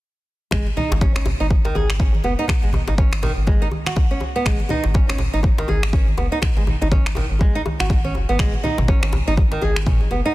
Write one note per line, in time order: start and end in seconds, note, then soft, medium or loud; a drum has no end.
0.51 0.64 G#1 medium
0.51 0.65 G#3 medium
0.51 finger snap medium
0.51 kick loud
0.51 djembe tone medium
0.51 low conga medium
0.67 muted conga soft
0.77 0.90 D#4 medium
0.77 djembe tone medium
0.77 high conga medium
0.77 low conga medium
0.91 1.10 G#1 medium
0.91 djembe slap medium
1.01 1.14 C#4 medium
1.01 kick loud
1.01 muted conga soft
1.01 djembe tone medium
1.01 high conga medium
1.16 1.34 G#1 medium
1.16 1.25 C#4 medium
1.16 finger snap medium
1.16 djembe slap medium
1.26 djembe slap medium
1.26 djembe tone medium
1.26 low conga medium
1.40 1.72 G#1 loud
1.40 1.46 D#4 medium
1.50 kick loud
1.50 muted conga soft
1.50 djembe tone medium
1.65 1.75 D#3 medium
1.65 djembe slap medium
1.75 2.21 G#1 medium
1.75 1.88 G#4 medium
1.75 high conga medium
1.75 djembe tone medium
1.90 finger snap medium
1.90 muted conga soft
2.00 2.13 C#4 medium
2.00 kick loud
2.00 djembe tone medium
2.15 high conga medium
2.24 2.36 F#1 medium
2.24 2.32 B3 medium
2.24 muted conga soft
2.24 djembe tone medium
2.39 2.44 D#4 medium
2.48 finger snap medium
2.48 kick loud
2.48 djembe tone medium
2.48 low conga medium
2.63 2.82 G#1 medium
2.63 2.69 G#3 medium
2.63 muted conga soft
2.73 high conga medium
2.73 djembe tone medium
2.73 low conga medium
2.88 3.06 G#1 medium
2.88 2.94 D#4 medium
2.88 djembe slap medium
2.98 3.11 C#4 medium
2.98 kick loud
2.98 muted conga soft
2.98 djembe tone medium
2.98 high conga loud
3.11 3.31 G#1 medium
3.11 finger snap medium
3.11 high conga medium
3.23 3.30 D#3 medium
3.23 djembe slap medium
3.23 djembe tone medium
3.23 low conga medium
3.37 3.68 G#1 loud
3.47 3.61 G#3 medium
3.47 kick loud
3.47 muted conga soft
3.47 djembe tone medium
3.62 3.67 D#4 loud
3.71 high conga medium
3.71 djembe tone medium
3.86 3.96 F#4 medium
3.86 finger snap medium
3.86 muted conga soft
3.86 high conga medium
3.96 kick loud
3.96 djembe tone medium
4.11 4.21 C#4 medium
4.20 muted conga soft
4.20 djembe tone medium
4.36 4.45 B3 medium
4.45 4.57 G#1 loud
4.45 4.59 G#3 medium
4.45 finger snap medium
4.45 kick loud
4.45 djembe tone medium
4.45 low conga medium
4.60 muted conga soft
4.69 4.83 D#4 medium
4.69 djembe tone medium
4.69 high conga medium
4.69 low conga medium
4.84 5.03 G#1 medium
4.84 djembe slap medium
4.94 5.08 C#4 medium
4.94 kick loud
4.94 muted conga soft
4.94 djembe tone medium
4.94 high conga loud
5.09 5.28 G#1 medium
5.09 5.18 C#4 medium
5.09 finger snap medium
5.09 djembe slap medium
5.09 high conga medium
5.18 djembe slap medium
5.18 djembe tone medium
5.18 low conga medium
5.33 5.65 G#1 loud
5.33 5.39 D#4 loud
5.43 kick loud
5.43 muted conga soft
5.43 djembe tone medium
5.58 5.68 D#3 medium
5.58 djembe slap medium
5.68 6.14 G#1 medium
5.68 5.82 G#4 medium
5.68 djembe tone medium
5.68 high conga medium
5.83 finger snap medium
5.83 muted conga soft
5.93 6.06 C#4 medium
5.93 kick loud
5.93 djembe tone medium
6.08 high conga medium
6.17 6.29 F#1 loud
6.17 6.25 B3 medium
6.17 muted conga soft
6.17 djembe tone loud
6.32 6.38 D#4 medium
6.42 finger snap medium
6.42 kick loud
6.42 djembe tone medium
6.42 low conga medium
6.57 6.75 G#1 medium
6.57 6.62 G#3 medium
6.57 muted conga medium
6.67 djembe tone medium
6.67 high conga medium
6.67 low conga medium
6.81 7.00 G#1 medium
6.81 6.87 D#4 medium
6.81 djembe slap medium
6.91 7.05 C#4 medium
6.91 kick loud
6.91 muted conga soft
6.91 djembe tone medium
6.91 high conga loud
7.06 7.24 G#1 medium
7.06 finger snap medium
7.06 high conga medium
7.15 7.24 D#3 medium
7.15 djembe slap medium
7.15 djembe tone medium
7.15 low conga medium
7.31 7.62 G#1 loud
7.39 7.54 G#3 medium
7.39 kick loud
7.39 muted conga soft
7.39 djembe tone medium
7.55 7.61 D#4 loud
7.66 djembe tone medium
7.66 high conga medium
7.80 8.16 G#1 medium
7.80 7.89 F#4 medium
7.80 finger snap medium
7.80 muted conga soft
7.80 high conga medium
7.90 kick loud
7.90 djembe tone loud
8.04 8.14 C#4 medium
8.04 high conga medium
8.15 8.26 F#1 medium
8.15 muted conga soft
8.15 djembe tone medium
8.29 8.37 G#1 medium
8.29 8.38 B3 medium
8.39 8.51 G#1 medium
8.39 8.52 G#3 medium
8.39 finger snap medium
8.39 kick loud
8.39 mid tom medium
8.39 djembe tone medium
8.39 low conga medium
8.54 muted conga soft
8.63 8.77 D#4 medium
8.63 high conga medium
8.63 djembe tone medium
8.63 low conga medium
8.78 8.97 G#1 medium
8.78 mid tom medium
8.78 djembe slap medium
8.88 9.01 C#4 medium
8.88 kick loud
8.88 muted conga soft
8.88 high conga medium
8.88 djembe tone medium
9.03 9.21 G#1 medium
9.03 9.12 C#4 medium
9.03 finger snap medium
9.03 djembe slap medium
9.03 high conga medium
9.13 djembe slap medium
9.13 djembe tone medium
9.13 low conga medium
9.27 9.59 G#1 loud
9.27 9.33 D#4 loud
9.37 kick loud
9.37 muted conga soft
9.37 djembe tone medium
9.52 9.62 D#3 medium
9.52 djembe slap medium
9.62 10.08 G#1 medium
9.62 9.75 G#4 medium
9.62 djembe tone medium
9.62 high conga medium
9.76 finger snap medium
9.76 muted conga soft
9.87 10.00 C#4 medium
9.87 kick loud
9.87 mid tom medium
9.87 djembe tone medium
10.01 high conga medium
10.11 10.23 F#1 medium
10.11 10.19 B3 medium
10.11 muted conga soft
10.11 djembe tone medium
10.25 10.31 D#4 medium